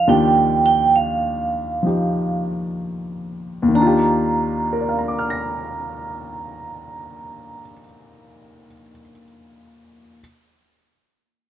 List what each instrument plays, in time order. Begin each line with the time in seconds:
Already playing: grand piano F3 D#4 G4
0.07 grand piano D#2 D#3 D4 F4 G4, vibraphone G5
0.66 vibraphone G5
0.96 vibraphone F5
1.83 grand piano F3 D#4 G4
3.62 grand piano D#2
3.68 grand piano D#3
3.75 grand piano D4, vibraphone A#5
3.81 grand piano F4
3.87 grand piano G4
4.73 grand piano A#4
4.81 grand piano D5
4.89 grand piano F5
4.98 grand piano A#5
5.08 grand piano D6
5.19 grand piano F6
5.30 grand piano A#6